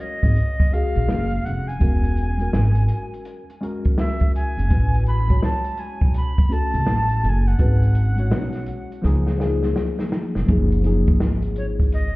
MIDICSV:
0, 0, Header, 1, 5, 480
1, 0, Start_track
1, 0, Key_signature, 6, "major"
1, 0, Tempo, 722892
1, 1201, Time_signature, 4, 2, 24, 8
1, 8072, End_track
2, 0, Start_track
2, 0, Title_t, "Recorder"
2, 0, Program_c, 0, 74
2, 4, Note_on_c, 0, 75, 86
2, 487, Note_on_c, 0, 77, 107
2, 497, Note_off_c, 0, 75, 0
2, 965, Note_on_c, 0, 78, 90
2, 974, Note_off_c, 0, 77, 0
2, 1115, Note_on_c, 0, 80, 85
2, 1125, Note_off_c, 0, 78, 0
2, 2074, Note_off_c, 0, 80, 0
2, 2653, Note_on_c, 0, 76, 86
2, 2871, Note_off_c, 0, 76, 0
2, 2893, Note_on_c, 0, 80, 99
2, 3341, Note_off_c, 0, 80, 0
2, 3371, Note_on_c, 0, 83, 106
2, 3590, Note_off_c, 0, 83, 0
2, 3610, Note_on_c, 0, 81, 107
2, 3848, Note_on_c, 0, 80, 90
2, 3858, Note_off_c, 0, 81, 0
2, 4085, Note_off_c, 0, 80, 0
2, 4096, Note_on_c, 0, 83, 90
2, 4333, Note_on_c, 0, 81, 113
2, 4343, Note_off_c, 0, 83, 0
2, 4812, Note_off_c, 0, 81, 0
2, 4812, Note_on_c, 0, 81, 89
2, 4843, Note_on_c, 0, 80, 97
2, 4849, Note_off_c, 0, 81, 0
2, 4963, Note_on_c, 0, 78, 83
2, 4973, Note_off_c, 0, 80, 0
2, 5918, Note_off_c, 0, 78, 0
2, 7689, Note_on_c, 0, 73, 70
2, 7742, Note_off_c, 0, 73, 0
2, 7927, Note_on_c, 0, 75, 90
2, 8072, Note_off_c, 0, 75, 0
2, 8072, End_track
3, 0, Start_track
3, 0, Title_t, "Tine electric piano"
3, 0, Program_c, 1, 4
3, 0, Note_on_c, 1, 56, 57
3, 0, Note_on_c, 1, 61, 53
3, 0, Note_on_c, 1, 66, 54
3, 0, Note_on_c, 1, 70, 69
3, 353, Note_off_c, 1, 56, 0
3, 356, Note_off_c, 1, 61, 0
3, 360, Note_off_c, 1, 66, 0
3, 364, Note_off_c, 1, 70, 0
3, 472, Note_on_c, 1, 56, 70
3, 479, Note_on_c, 1, 61, 72
3, 488, Note_on_c, 1, 66, 74
3, 495, Note_on_c, 1, 68, 83
3, 1101, Note_off_c, 1, 56, 0
3, 1104, Note_off_c, 1, 61, 0
3, 1109, Note_off_c, 1, 66, 0
3, 1112, Note_off_c, 1, 68, 0
3, 1189, Note_on_c, 1, 56, 59
3, 1197, Note_on_c, 1, 61, 57
3, 1204, Note_on_c, 1, 66, 64
3, 1213, Note_on_c, 1, 70, 70
3, 1507, Note_off_c, 1, 56, 0
3, 1511, Note_off_c, 1, 61, 0
3, 1515, Note_off_c, 1, 66, 0
3, 1519, Note_off_c, 1, 70, 0
3, 1580, Note_on_c, 1, 56, 59
3, 1589, Note_on_c, 1, 61, 52
3, 1598, Note_on_c, 1, 66, 59
3, 1607, Note_on_c, 1, 70, 73
3, 2272, Note_off_c, 1, 56, 0
3, 2277, Note_off_c, 1, 61, 0
3, 2281, Note_off_c, 1, 66, 0
3, 2285, Note_off_c, 1, 70, 0
3, 2393, Note_on_c, 1, 56, 89
3, 2399, Note_on_c, 1, 61, 87
3, 2409, Note_on_c, 1, 66, 85
3, 2416, Note_on_c, 1, 70, 93
3, 3021, Note_off_c, 1, 56, 0
3, 3024, Note_off_c, 1, 61, 0
3, 3029, Note_off_c, 1, 66, 0
3, 3033, Note_off_c, 1, 70, 0
3, 3114, Note_on_c, 1, 56, 66
3, 3122, Note_on_c, 1, 61, 59
3, 3130, Note_on_c, 1, 66, 59
3, 3138, Note_on_c, 1, 71, 61
3, 3430, Note_off_c, 1, 56, 0
3, 3434, Note_off_c, 1, 61, 0
3, 3438, Note_off_c, 1, 66, 0
3, 3442, Note_off_c, 1, 71, 0
3, 3501, Note_on_c, 1, 56, 65
3, 3510, Note_on_c, 1, 61, 50
3, 3518, Note_on_c, 1, 66, 62
3, 3526, Note_on_c, 1, 73, 69
3, 4193, Note_off_c, 1, 56, 0
3, 4197, Note_off_c, 1, 61, 0
3, 4201, Note_off_c, 1, 66, 0
3, 4205, Note_off_c, 1, 73, 0
3, 4308, Note_on_c, 1, 57, 73
3, 4315, Note_on_c, 1, 61, 70
3, 4324, Note_on_c, 1, 66, 65
3, 4333, Note_on_c, 1, 69, 78
3, 4939, Note_off_c, 1, 57, 0
3, 4942, Note_off_c, 1, 61, 0
3, 4947, Note_off_c, 1, 66, 0
3, 4951, Note_off_c, 1, 69, 0
3, 5027, Note_on_c, 1, 56, 55
3, 5035, Note_on_c, 1, 61, 59
3, 5045, Note_on_c, 1, 66, 58
3, 5053, Note_on_c, 1, 71, 66
3, 5346, Note_off_c, 1, 56, 0
3, 5350, Note_off_c, 1, 61, 0
3, 5355, Note_off_c, 1, 66, 0
3, 5359, Note_off_c, 1, 71, 0
3, 5418, Note_on_c, 1, 56, 65
3, 5428, Note_on_c, 1, 61, 53
3, 5436, Note_on_c, 1, 66, 62
3, 5442, Note_on_c, 1, 73, 69
3, 5988, Note_on_c, 1, 53, 98
3, 5994, Note_off_c, 1, 56, 0
3, 5997, Note_on_c, 1, 58, 77
3, 5999, Note_off_c, 1, 61, 0
3, 6002, Note_off_c, 1, 66, 0
3, 6006, Note_off_c, 1, 73, 0
3, 6006, Note_on_c, 1, 63, 93
3, 6014, Note_on_c, 1, 68, 105
3, 6204, Note_off_c, 1, 53, 0
3, 6208, Note_off_c, 1, 58, 0
3, 6213, Note_off_c, 1, 63, 0
3, 6217, Note_off_c, 1, 68, 0
3, 6228, Note_on_c, 1, 53, 79
3, 6234, Note_on_c, 1, 58, 82
3, 6243, Note_on_c, 1, 63, 80
3, 6251, Note_on_c, 1, 68, 99
3, 6859, Note_off_c, 1, 53, 0
3, 6862, Note_off_c, 1, 58, 0
3, 6866, Note_off_c, 1, 63, 0
3, 6870, Note_off_c, 1, 68, 0
3, 6949, Note_on_c, 1, 53, 80
3, 6956, Note_on_c, 1, 58, 67
3, 6964, Note_on_c, 1, 63, 73
3, 6972, Note_on_c, 1, 68, 86
3, 7164, Note_off_c, 1, 53, 0
3, 7168, Note_off_c, 1, 58, 0
3, 7172, Note_off_c, 1, 63, 0
3, 7176, Note_off_c, 1, 68, 0
3, 7186, Note_on_c, 1, 53, 77
3, 7196, Note_on_c, 1, 58, 70
3, 7204, Note_on_c, 1, 63, 84
3, 7213, Note_on_c, 1, 68, 98
3, 8005, Note_off_c, 1, 53, 0
3, 8010, Note_off_c, 1, 58, 0
3, 8013, Note_off_c, 1, 63, 0
3, 8018, Note_off_c, 1, 68, 0
3, 8072, End_track
4, 0, Start_track
4, 0, Title_t, "Upright bass"
4, 0, Program_c, 2, 32
4, 153, Note_on_c, 2, 32, 91
4, 233, Note_off_c, 2, 32, 0
4, 636, Note_on_c, 2, 34, 90
4, 715, Note_off_c, 2, 34, 0
4, 723, Note_on_c, 2, 30, 92
4, 941, Note_off_c, 2, 30, 0
4, 964, Note_on_c, 2, 29, 72
4, 1182, Note_off_c, 2, 29, 0
4, 1203, Note_on_c, 2, 28, 95
4, 1656, Note_off_c, 2, 28, 0
4, 1683, Note_on_c, 2, 32, 82
4, 1901, Note_off_c, 2, 32, 0
4, 3038, Note_on_c, 2, 30, 79
4, 3116, Note_off_c, 2, 30, 0
4, 3127, Note_on_c, 2, 33, 89
4, 3577, Note_off_c, 2, 33, 0
4, 3996, Note_on_c, 2, 35, 76
4, 4075, Note_off_c, 2, 35, 0
4, 4474, Note_on_c, 2, 37, 95
4, 4563, Note_off_c, 2, 37, 0
4, 4563, Note_on_c, 2, 33, 91
4, 4781, Note_off_c, 2, 33, 0
4, 4803, Note_on_c, 2, 30, 90
4, 5021, Note_off_c, 2, 30, 0
4, 5044, Note_on_c, 2, 32, 92
4, 5524, Note_off_c, 2, 32, 0
4, 5524, Note_on_c, 2, 35, 90
4, 5742, Note_off_c, 2, 35, 0
4, 6004, Note_on_c, 2, 37, 95
4, 6456, Note_off_c, 2, 37, 0
4, 6876, Note_on_c, 2, 29, 84
4, 6955, Note_off_c, 2, 29, 0
4, 6963, Note_on_c, 2, 30, 112
4, 7328, Note_off_c, 2, 30, 0
4, 7359, Note_on_c, 2, 32, 74
4, 8072, Note_off_c, 2, 32, 0
4, 8072, End_track
5, 0, Start_track
5, 0, Title_t, "Drums"
5, 153, Note_on_c, 9, 36, 87
5, 165, Note_on_c, 9, 42, 43
5, 219, Note_off_c, 9, 36, 0
5, 232, Note_off_c, 9, 42, 0
5, 240, Note_on_c, 9, 42, 85
5, 306, Note_off_c, 9, 42, 0
5, 398, Note_on_c, 9, 36, 97
5, 401, Note_on_c, 9, 42, 57
5, 464, Note_off_c, 9, 36, 0
5, 467, Note_off_c, 9, 42, 0
5, 490, Note_on_c, 9, 42, 75
5, 556, Note_off_c, 9, 42, 0
5, 634, Note_on_c, 9, 42, 43
5, 701, Note_off_c, 9, 42, 0
5, 721, Note_on_c, 9, 38, 100
5, 788, Note_off_c, 9, 38, 0
5, 862, Note_on_c, 9, 42, 45
5, 929, Note_off_c, 9, 42, 0
5, 970, Note_on_c, 9, 42, 75
5, 1036, Note_off_c, 9, 42, 0
5, 1123, Note_on_c, 9, 42, 50
5, 1189, Note_off_c, 9, 42, 0
5, 1200, Note_on_c, 9, 42, 86
5, 1202, Note_on_c, 9, 36, 99
5, 1266, Note_off_c, 9, 42, 0
5, 1268, Note_off_c, 9, 36, 0
5, 1356, Note_on_c, 9, 42, 50
5, 1422, Note_off_c, 9, 42, 0
5, 1441, Note_on_c, 9, 42, 60
5, 1507, Note_off_c, 9, 42, 0
5, 1593, Note_on_c, 9, 42, 47
5, 1660, Note_off_c, 9, 42, 0
5, 1682, Note_on_c, 9, 38, 102
5, 1748, Note_off_c, 9, 38, 0
5, 1826, Note_on_c, 9, 42, 62
5, 1893, Note_off_c, 9, 42, 0
5, 1915, Note_on_c, 9, 42, 91
5, 1981, Note_off_c, 9, 42, 0
5, 2083, Note_on_c, 9, 42, 49
5, 2149, Note_off_c, 9, 42, 0
5, 2159, Note_on_c, 9, 42, 92
5, 2226, Note_off_c, 9, 42, 0
5, 2322, Note_on_c, 9, 42, 58
5, 2389, Note_off_c, 9, 42, 0
5, 2411, Note_on_c, 9, 42, 70
5, 2477, Note_off_c, 9, 42, 0
5, 2554, Note_on_c, 9, 42, 47
5, 2560, Note_on_c, 9, 36, 76
5, 2621, Note_off_c, 9, 42, 0
5, 2627, Note_off_c, 9, 36, 0
5, 2641, Note_on_c, 9, 38, 117
5, 2708, Note_off_c, 9, 38, 0
5, 2787, Note_on_c, 9, 42, 46
5, 2796, Note_on_c, 9, 36, 77
5, 2854, Note_off_c, 9, 42, 0
5, 2863, Note_off_c, 9, 36, 0
5, 2893, Note_on_c, 9, 42, 81
5, 2960, Note_off_c, 9, 42, 0
5, 3047, Note_on_c, 9, 42, 50
5, 3113, Note_off_c, 9, 42, 0
5, 3124, Note_on_c, 9, 42, 82
5, 3125, Note_on_c, 9, 36, 92
5, 3190, Note_off_c, 9, 42, 0
5, 3191, Note_off_c, 9, 36, 0
5, 3280, Note_on_c, 9, 42, 53
5, 3347, Note_off_c, 9, 42, 0
5, 3363, Note_on_c, 9, 42, 54
5, 3429, Note_off_c, 9, 42, 0
5, 3517, Note_on_c, 9, 42, 50
5, 3519, Note_on_c, 9, 36, 88
5, 3583, Note_off_c, 9, 42, 0
5, 3586, Note_off_c, 9, 36, 0
5, 3603, Note_on_c, 9, 38, 103
5, 3669, Note_off_c, 9, 38, 0
5, 3748, Note_on_c, 9, 42, 63
5, 3814, Note_off_c, 9, 42, 0
5, 3834, Note_on_c, 9, 42, 89
5, 3901, Note_off_c, 9, 42, 0
5, 3993, Note_on_c, 9, 36, 92
5, 4005, Note_on_c, 9, 42, 41
5, 4060, Note_off_c, 9, 36, 0
5, 4072, Note_off_c, 9, 42, 0
5, 4078, Note_on_c, 9, 42, 89
5, 4144, Note_off_c, 9, 42, 0
5, 4238, Note_on_c, 9, 36, 104
5, 4239, Note_on_c, 9, 42, 62
5, 4304, Note_off_c, 9, 36, 0
5, 4305, Note_off_c, 9, 42, 0
5, 4329, Note_on_c, 9, 42, 72
5, 4395, Note_off_c, 9, 42, 0
5, 4475, Note_on_c, 9, 42, 51
5, 4541, Note_off_c, 9, 42, 0
5, 4559, Note_on_c, 9, 38, 118
5, 4625, Note_off_c, 9, 38, 0
5, 4706, Note_on_c, 9, 42, 49
5, 4772, Note_off_c, 9, 42, 0
5, 4809, Note_on_c, 9, 42, 82
5, 4876, Note_off_c, 9, 42, 0
5, 4964, Note_on_c, 9, 42, 47
5, 5030, Note_off_c, 9, 42, 0
5, 5039, Note_on_c, 9, 42, 89
5, 5042, Note_on_c, 9, 36, 95
5, 5105, Note_off_c, 9, 42, 0
5, 5108, Note_off_c, 9, 36, 0
5, 5196, Note_on_c, 9, 42, 58
5, 5262, Note_off_c, 9, 42, 0
5, 5278, Note_on_c, 9, 42, 66
5, 5345, Note_off_c, 9, 42, 0
5, 5432, Note_on_c, 9, 42, 51
5, 5498, Note_off_c, 9, 42, 0
5, 5521, Note_on_c, 9, 38, 110
5, 5587, Note_off_c, 9, 38, 0
5, 5662, Note_on_c, 9, 42, 57
5, 5671, Note_on_c, 9, 38, 40
5, 5728, Note_off_c, 9, 42, 0
5, 5737, Note_off_c, 9, 38, 0
5, 5753, Note_on_c, 9, 42, 81
5, 5819, Note_off_c, 9, 42, 0
5, 5923, Note_on_c, 9, 42, 40
5, 5989, Note_off_c, 9, 42, 0
5, 6001, Note_on_c, 9, 38, 50
5, 6067, Note_off_c, 9, 38, 0
5, 6154, Note_on_c, 9, 38, 52
5, 6221, Note_off_c, 9, 38, 0
5, 6242, Note_on_c, 9, 38, 71
5, 6308, Note_off_c, 9, 38, 0
5, 6393, Note_on_c, 9, 38, 52
5, 6459, Note_off_c, 9, 38, 0
5, 6479, Note_on_c, 9, 38, 81
5, 6546, Note_off_c, 9, 38, 0
5, 6632, Note_on_c, 9, 38, 73
5, 6699, Note_off_c, 9, 38, 0
5, 6720, Note_on_c, 9, 38, 102
5, 6787, Note_off_c, 9, 38, 0
5, 6874, Note_on_c, 9, 38, 75
5, 6941, Note_off_c, 9, 38, 0
5, 6960, Note_on_c, 9, 42, 73
5, 6963, Note_on_c, 9, 36, 94
5, 7027, Note_off_c, 9, 42, 0
5, 7029, Note_off_c, 9, 36, 0
5, 7118, Note_on_c, 9, 42, 52
5, 7185, Note_off_c, 9, 42, 0
5, 7198, Note_on_c, 9, 42, 66
5, 7264, Note_off_c, 9, 42, 0
5, 7351, Note_on_c, 9, 42, 52
5, 7357, Note_on_c, 9, 36, 105
5, 7417, Note_off_c, 9, 42, 0
5, 7423, Note_off_c, 9, 36, 0
5, 7440, Note_on_c, 9, 38, 111
5, 7506, Note_off_c, 9, 38, 0
5, 7585, Note_on_c, 9, 42, 59
5, 7651, Note_off_c, 9, 42, 0
5, 7674, Note_on_c, 9, 42, 74
5, 7741, Note_off_c, 9, 42, 0
5, 7833, Note_on_c, 9, 36, 84
5, 7844, Note_on_c, 9, 42, 45
5, 7899, Note_off_c, 9, 36, 0
5, 7911, Note_off_c, 9, 42, 0
5, 7917, Note_on_c, 9, 42, 88
5, 7983, Note_off_c, 9, 42, 0
5, 8072, End_track
0, 0, End_of_file